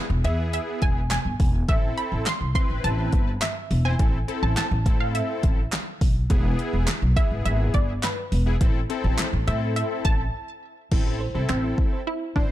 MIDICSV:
0, 0, Header, 1, 6, 480
1, 0, Start_track
1, 0, Key_signature, 0, "minor"
1, 0, Tempo, 576923
1, 1402, Time_signature, 4, 2, 24, 8
1, 10412, End_track
2, 0, Start_track
2, 0, Title_t, "Synth pluck"
2, 0, Program_c, 0, 84
2, 207, Note_on_c, 0, 76, 87
2, 436, Note_off_c, 0, 76, 0
2, 446, Note_on_c, 0, 76, 93
2, 668, Note_off_c, 0, 76, 0
2, 685, Note_on_c, 0, 80, 98
2, 915, Note_off_c, 0, 80, 0
2, 925, Note_on_c, 0, 80, 100
2, 1258, Note_off_c, 0, 80, 0
2, 1404, Note_on_c, 0, 76, 100
2, 1626, Note_off_c, 0, 76, 0
2, 1644, Note_on_c, 0, 83, 99
2, 1751, Note_off_c, 0, 83, 0
2, 1884, Note_on_c, 0, 84, 108
2, 2107, Note_off_c, 0, 84, 0
2, 2124, Note_on_c, 0, 84, 104
2, 2364, Note_on_c, 0, 81, 102
2, 2370, Note_off_c, 0, 84, 0
2, 2844, Note_on_c, 0, 76, 95
2, 2858, Note_off_c, 0, 81, 0
2, 3204, Note_on_c, 0, 80, 104
2, 3214, Note_off_c, 0, 76, 0
2, 3650, Note_off_c, 0, 80, 0
2, 3684, Note_on_c, 0, 81, 93
2, 3737, Note_off_c, 0, 81, 0
2, 3803, Note_on_c, 0, 81, 97
2, 4164, Note_on_c, 0, 77, 81
2, 4174, Note_off_c, 0, 81, 0
2, 4283, Note_on_c, 0, 76, 78
2, 4287, Note_off_c, 0, 77, 0
2, 4970, Note_off_c, 0, 76, 0
2, 5962, Note_on_c, 0, 76, 106
2, 6070, Note_off_c, 0, 76, 0
2, 6202, Note_on_c, 0, 76, 106
2, 6310, Note_off_c, 0, 76, 0
2, 6442, Note_on_c, 0, 74, 94
2, 6550, Note_off_c, 0, 74, 0
2, 6682, Note_on_c, 0, 71, 81
2, 7017, Note_off_c, 0, 71, 0
2, 7884, Note_on_c, 0, 76, 82
2, 7992, Note_off_c, 0, 76, 0
2, 8122, Note_on_c, 0, 76, 89
2, 8362, Note_on_c, 0, 81, 107
2, 8370, Note_off_c, 0, 76, 0
2, 8809, Note_off_c, 0, 81, 0
2, 9564, Note_on_c, 0, 60, 88
2, 10043, Note_on_c, 0, 64, 104
2, 10057, Note_off_c, 0, 60, 0
2, 10151, Note_off_c, 0, 64, 0
2, 10282, Note_on_c, 0, 62, 90
2, 10412, Note_off_c, 0, 62, 0
2, 10412, End_track
3, 0, Start_track
3, 0, Title_t, "Synth arpeggio sound"
3, 0, Program_c, 1, 84
3, 9083, Note_on_c, 1, 64, 91
3, 9157, Note_off_c, 1, 64, 0
3, 9203, Note_on_c, 1, 69, 72
3, 9277, Note_off_c, 1, 69, 0
3, 9323, Note_on_c, 1, 72, 82
3, 9397, Note_off_c, 1, 72, 0
3, 9563, Note_on_c, 1, 88, 92
3, 9637, Note_off_c, 1, 88, 0
3, 9684, Note_on_c, 1, 64, 73
3, 9758, Note_off_c, 1, 64, 0
3, 9923, Note_on_c, 1, 72, 77
3, 9997, Note_off_c, 1, 72, 0
3, 10044, Note_on_c, 1, 76, 98
3, 10118, Note_off_c, 1, 76, 0
3, 10284, Note_on_c, 1, 64, 78
3, 10358, Note_off_c, 1, 64, 0
3, 10412, End_track
4, 0, Start_track
4, 0, Title_t, "Analog polysynth"
4, 0, Program_c, 2, 90
4, 200, Note_on_c, 2, 59, 79
4, 202, Note_on_c, 2, 64, 70
4, 204, Note_on_c, 2, 68, 87
4, 834, Note_off_c, 2, 59, 0
4, 835, Note_off_c, 2, 64, 0
4, 836, Note_off_c, 2, 68, 0
4, 1400, Note_on_c, 2, 60, 75
4, 1403, Note_on_c, 2, 64, 69
4, 1405, Note_on_c, 2, 69, 83
4, 1876, Note_off_c, 2, 60, 0
4, 1877, Note_off_c, 2, 64, 0
4, 1878, Note_off_c, 2, 69, 0
4, 2121, Note_on_c, 2, 60, 77
4, 2123, Note_on_c, 2, 64, 67
4, 2125, Note_on_c, 2, 71, 84
4, 2755, Note_off_c, 2, 60, 0
4, 2755, Note_off_c, 2, 64, 0
4, 2756, Note_off_c, 2, 71, 0
4, 3202, Note_on_c, 2, 60, 78
4, 3204, Note_on_c, 2, 64, 73
4, 3206, Note_on_c, 2, 72, 90
4, 3281, Note_off_c, 2, 60, 0
4, 3282, Note_off_c, 2, 64, 0
4, 3283, Note_off_c, 2, 72, 0
4, 3321, Note_on_c, 2, 60, 77
4, 3323, Note_on_c, 2, 64, 70
4, 3325, Note_on_c, 2, 69, 85
4, 3480, Note_off_c, 2, 60, 0
4, 3481, Note_off_c, 2, 64, 0
4, 3482, Note_off_c, 2, 69, 0
4, 3561, Note_on_c, 2, 60, 74
4, 3563, Note_on_c, 2, 64, 69
4, 3566, Note_on_c, 2, 69, 82
4, 3878, Note_off_c, 2, 60, 0
4, 3879, Note_off_c, 2, 64, 0
4, 3880, Note_off_c, 2, 69, 0
4, 4041, Note_on_c, 2, 60, 78
4, 4043, Note_on_c, 2, 64, 68
4, 4045, Note_on_c, 2, 69, 84
4, 4675, Note_off_c, 2, 60, 0
4, 4676, Note_off_c, 2, 64, 0
4, 4677, Note_off_c, 2, 69, 0
4, 5240, Note_on_c, 2, 59, 91
4, 5241, Note_on_c, 2, 64, 86
4, 5244, Note_on_c, 2, 68, 100
4, 5716, Note_off_c, 2, 59, 0
4, 5717, Note_off_c, 2, 64, 0
4, 5718, Note_off_c, 2, 68, 0
4, 5960, Note_on_c, 2, 59, 76
4, 5963, Note_on_c, 2, 64, 71
4, 5965, Note_on_c, 2, 68, 83
4, 6594, Note_off_c, 2, 59, 0
4, 6596, Note_off_c, 2, 64, 0
4, 6597, Note_off_c, 2, 68, 0
4, 7041, Note_on_c, 2, 59, 77
4, 7043, Note_on_c, 2, 64, 75
4, 7045, Note_on_c, 2, 68, 85
4, 7121, Note_off_c, 2, 59, 0
4, 7122, Note_off_c, 2, 64, 0
4, 7123, Note_off_c, 2, 68, 0
4, 7161, Note_on_c, 2, 60, 92
4, 7163, Note_on_c, 2, 64, 83
4, 7165, Note_on_c, 2, 69, 100
4, 7320, Note_off_c, 2, 60, 0
4, 7321, Note_off_c, 2, 64, 0
4, 7322, Note_off_c, 2, 69, 0
4, 7401, Note_on_c, 2, 60, 93
4, 7403, Note_on_c, 2, 64, 80
4, 7405, Note_on_c, 2, 69, 102
4, 7718, Note_off_c, 2, 60, 0
4, 7719, Note_off_c, 2, 64, 0
4, 7720, Note_off_c, 2, 69, 0
4, 7881, Note_on_c, 2, 60, 78
4, 7883, Note_on_c, 2, 64, 68
4, 7885, Note_on_c, 2, 69, 83
4, 8515, Note_off_c, 2, 60, 0
4, 8516, Note_off_c, 2, 64, 0
4, 8517, Note_off_c, 2, 69, 0
4, 9081, Note_on_c, 2, 60, 91
4, 9083, Note_on_c, 2, 64, 78
4, 9085, Note_on_c, 2, 69, 93
4, 9319, Note_off_c, 2, 60, 0
4, 9320, Note_off_c, 2, 64, 0
4, 9321, Note_off_c, 2, 69, 0
4, 9441, Note_on_c, 2, 60, 74
4, 9442, Note_on_c, 2, 64, 70
4, 9445, Note_on_c, 2, 69, 79
4, 9995, Note_off_c, 2, 60, 0
4, 9996, Note_off_c, 2, 64, 0
4, 9997, Note_off_c, 2, 69, 0
4, 10280, Note_on_c, 2, 60, 74
4, 10282, Note_on_c, 2, 64, 69
4, 10284, Note_on_c, 2, 72, 85
4, 10412, Note_off_c, 2, 60, 0
4, 10412, Note_off_c, 2, 64, 0
4, 10412, Note_off_c, 2, 72, 0
4, 10412, End_track
5, 0, Start_track
5, 0, Title_t, "Upright bass"
5, 0, Program_c, 3, 32
5, 82, Note_on_c, 3, 28, 103
5, 174, Note_off_c, 3, 28, 0
5, 201, Note_on_c, 3, 40, 98
5, 477, Note_off_c, 3, 40, 0
5, 682, Note_on_c, 3, 28, 93
5, 957, Note_off_c, 3, 28, 0
5, 1041, Note_on_c, 3, 31, 83
5, 1133, Note_off_c, 3, 31, 0
5, 1163, Note_on_c, 3, 28, 94
5, 1346, Note_off_c, 3, 28, 0
5, 1763, Note_on_c, 3, 33, 90
5, 1854, Note_off_c, 3, 33, 0
5, 2003, Note_on_c, 3, 36, 80
5, 2094, Note_off_c, 3, 36, 0
5, 2243, Note_on_c, 3, 33, 80
5, 2335, Note_off_c, 3, 33, 0
5, 2363, Note_on_c, 3, 33, 101
5, 2546, Note_off_c, 3, 33, 0
5, 2602, Note_on_c, 3, 31, 95
5, 2786, Note_off_c, 3, 31, 0
5, 3084, Note_on_c, 3, 28, 99
5, 3267, Note_off_c, 3, 28, 0
5, 3324, Note_on_c, 3, 33, 105
5, 3507, Note_off_c, 3, 33, 0
5, 3682, Note_on_c, 3, 33, 102
5, 3774, Note_off_c, 3, 33, 0
5, 3922, Note_on_c, 3, 33, 102
5, 4014, Note_off_c, 3, 33, 0
5, 4042, Note_on_c, 3, 45, 104
5, 4317, Note_off_c, 3, 45, 0
5, 4521, Note_on_c, 3, 33, 92
5, 4705, Note_off_c, 3, 33, 0
5, 5002, Note_on_c, 3, 35, 96
5, 5186, Note_off_c, 3, 35, 0
5, 5243, Note_on_c, 3, 28, 113
5, 5426, Note_off_c, 3, 28, 0
5, 5602, Note_on_c, 3, 28, 94
5, 5694, Note_off_c, 3, 28, 0
5, 5841, Note_on_c, 3, 35, 97
5, 5933, Note_off_c, 3, 35, 0
5, 6082, Note_on_c, 3, 32, 91
5, 6174, Note_off_c, 3, 32, 0
5, 6201, Note_on_c, 3, 32, 92
5, 6385, Note_off_c, 3, 32, 0
5, 6441, Note_on_c, 3, 31, 98
5, 6625, Note_off_c, 3, 31, 0
5, 6921, Note_on_c, 3, 28, 99
5, 7105, Note_off_c, 3, 28, 0
5, 7163, Note_on_c, 3, 33, 103
5, 7346, Note_off_c, 3, 33, 0
5, 7522, Note_on_c, 3, 33, 101
5, 7614, Note_off_c, 3, 33, 0
5, 7762, Note_on_c, 3, 33, 96
5, 7854, Note_off_c, 3, 33, 0
5, 7883, Note_on_c, 3, 45, 100
5, 8158, Note_off_c, 3, 45, 0
5, 8361, Note_on_c, 3, 33, 97
5, 8545, Note_off_c, 3, 33, 0
5, 9082, Note_on_c, 3, 33, 101
5, 9358, Note_off_c, 3, 33, 0
5, 9442, Note_on_c, 3, 36, 81
5, 9534, Note_off_c, 3, 36, 0
5, 9562, Note_on_c, 3, 33, 81
5, 9746, Note_off_c, 3, 33, 0
5, 10281, Note_on_c, 3, 33, 88
5, 10412, Note_off_c, 3, 33, 0
5, 10412, End_track
6, 0, Start_track
6, 0, Title_t, "Drums"
6, 204, Note_on_c, 9, 42, 78
6, 287, Note_off_c, 9, 42, 0
6, 444, Note_on_c, 9, 42, 89
6, 527, Note_off_c, 9, 42, 0
6, 680, Note_on_c, 9, 42, 72
6, 682, Note_on_c, 9, 36, 96
6, 763, Note_off_c, 9, 42, 0
6, 765, Note_off_c, 9, 36, 0
6, 922, Note_on_c, 9, 42, 94
6, 923, Note_on_c, 9, 39, 100
6, 928, Note_on_c, 9, 38, 83
6, 1005, Note_off_c, 9, 42, 0
6, 1006, Note_off_c, 9, 39, 0
6, 1011, Note_off_c, 9, 38, 0
6, 1163, Note_on_c, 9, 36, 99
6, 1163, Note_on_c, 9, 46, 65
6, 1246, Note_off_c, 9, 36, 0
6, 1246, Note_off_c, 9, 46, 0
6, 1402, Note_on_c, 9, 42, 83
6, 1403, Note_on_c, 9, 36, 119
6, 1486, Note_off_c, 9, 36, 0
6, 1486, Note_off_c, 9, 42, 0
6, 1643, Note_on_c, 9, 42, 68
6, 1727, Note_off_c, 9, 42, 0
6, 1883, Note_on_c, 9, 39, 83
6, 1883, Note_on_c, 9, 42, 104
6, 1888, Note_on_c, 9, 38, 88
6, 1966, Note_off_c, 9, 39, 0
6, 1966, Note_off_c, 9, 42, 0
6, 1971, Note_off_c, 9, 38, 0
6, 2122, Note_on_c, 9, 36, 91
6, 2124, Note_on_c, 9, 42, 81
6, 2205, Note_off_c, 9, 36, 0
6, 2208, Note_off_c, 9, 42, 0
6, 2364, Note_on_c, 9, 42, 87
6, 2447, Note_off_c, 9, 42, 0
6, 2600, Note_on_c, 9, 42, 69
6, 2602, Note_on_c, 9, 36, 98
6, 2683, Note_off_c, 9, 42, 0
6, 2685, Note_off_c, 9, 36, 0
6, 2843, Note_on_c, 9, 42, 95
6, 2844, Note_on_c, 9, 39, 110
6, 2849, Note_on_c, 9, 38, 86
6, 2926, Note_off_c, 9, 42, 0
6, 2927, Note_off_c, 9, 39, 0
6, 2932, Note_off_c, 9, 38, 0
6, 3084, Note_on_c, 9, 46, 63
6, 3167, Note_off_c, 9, 46, 0
6, 3323, Note_on_c, 9, 42, 83
6, 3324, Note_on_c, 9, 36, 117
6, 3406, Note_off_c, 9, 42, 0
6, 3407, Note_off_c, 9, 36, 0
6, 3564, Note_on_c, 9, 42, 67
6, 3648, Note_off_c, 9, 42, 0
6, 3802, Note_on_c, 9, 42, 97
6, 3803, Note_on_c, 9, 39, 86
6, 3808, Note_on_c, 9, 38, 87
6, 3886, Note_off_c, 9, 39, 0
6, 3886, Note_off_c, 9, 42, 0
6, 3891, Note_off_c, 9, 38, 0
6, 4042, Note_on_c, 9, 36, 96
6, 4044, Note_on_c, 9, 42, 79
6, 4125, Note_off_c, 9, 36, 0
6, 4127, Note_off_c, 9, 42, 0
6, 4284, Note_on_c, 9, 42, 91
6, 4367, Note_off_c, 9, 42, 0
6, 4520, Note_on_c, 9, 42, 70
6, 4522, Note_on_c, 9, 36, 99
6, 4603, Note_off_c, 9, 42, 0
6, 4605, Note_off_c, 9, 36, 0
6, 4762, Note_on_c, 9, 42, 99
6, 4763, Note_on_c, 9, 39, 103
6, 4764, Note_off_c, 9, 39, 0
6, 4764, Note_on_c, 9, 39, 91
6, 4768, Note_on_c, 9, 38, 84
6, 4845, Note_off_c, 9, 42, 0
6, 4847, Note_off_c, 9, 39, 0
6, 4851, Note_off_c, 9, 38, 0
6, 5002, Note_on_c, 9, 36, 98
6, 5002, Note_on_c, 9, 46, 62
6, 5086, Note_off_c, 9, 36, 0
6, 5086, Note_off_c, 9, 46, 0
6, 5242, Note_on_c, 9, 42, 84
6, 5243, Note_on_c, 9, 36, 114
6, 5325, Note_off_c, 9, 42, 0
6, 5326, Note_off_c, 9, 36, 0
6, 5483, Note_on_c, 9, 42, 66
6, 5566, Note_off_c, 9, 42, 0
6, 5721, Note_on_c, 9, 39, 85
6, 5721, Note_on_c, 9, 42, 99
6, 5726, Note_on_c, 9, 38, 91
6, 5804, Note_off_c, 9, 42, 0
6, 5805, Note_off_c, 9, 39, 0
6, 5810, Note_off_c, 9, 38, 0
6, 5961, Note_on_c, 9, 36, 98
6, 5962, Note_on_c, 9, 42, 82
6, 6044, Note_off_c, 9, 36, 0
6, 6046, Note_off_c, 9, 42, 0
6, 6203, Note_on_c, 9, 42, 88
6, 6286, Note_off_c, 9, 42, 0
6, 6438, Note_on_c, 9, 42, 69
6, 6441, Note_on_c, 9, 36, 97
6, 6522, Note_off_c, 9, 42, 0
6, 6524, Note_off_c, 9, 36, 0
6, 6682, Note_on_c, 9, 42, 99
6, 6683, Note_on_c, 9, 39, 104
6, 6688, Note_on_c, 9, 38, 87
6, 6765, Note_off_c, 9, 42, 0
6, 6766, Note_off_c, 9, 39, 0
6, 6771, Note_off_c, 9, 38, 0
6, 6922, Note_on_c, 9, 46, 65
6, 7006, Note_off_c, 9, 46, 0
6, 7162, Note_on_c, 9, 42, 86
6, 7163, Note_on_c, 9, 36, 117
6, 7245, Note_off_c, 9, 42, 0
6, 7246, Note_off_c, 9, 36, 0
6, 7403, Note_on_c, 9, 42, 72
6, 7486, Note_off_c, 9, 42, 0
6, 7642, Note_on_c, 9, 42, 96
6, 7643, Note_on_c, 9, 39, 89
6, 7647, Note_on_c, 9, 38, 91
6, 7725, Note_off_c, 9, 42, 0
6, 7726, Note_off_c, 9, 39, 0
6, 7731, Note_off_c, 9, 38, 0
6, 7884, Note_on_c, 9, 42, 76
6, 7967, Note_off_c, 9, 42, 0
6, 8123, Note_on_c, 9, 42, 92
6, 8206, Note_off_c, 9, 42, 0
6, 8359, Note_on_c, 9, 42, 74
6, 8361, Note_on_c, 9, 36, 102
6, 8442, Note_off_c, 9, 42, 0
6, 8445, Note_off_c, 9, 36, 0
6, 9082, Note_on_c, 9, 36, 113
6, 9082, Note_on_c, 9, 49, 89
6, 9165, Note_off_c, 9, 49, 0
6, 9166, Note_off_c, 9, 36, 0
6, 9561, Note_on_c, 9, 26, 105
6, 9562, Note_on_c, 9, 39, 83
6, 9644, Note_off_c, 9, 26, 0
6, 9645, Note_off_c, 9, 39, 0
6, 9801, Note_on_c, 9, 36, 94
6, 9884, Note_off_c, 9, 36, 0
6, 10281, Note_on_c, 9, 36, 91
6, 10365, Note_off_c, 9, 36, 0
6, 10412, End_track
0, 0, End_of_file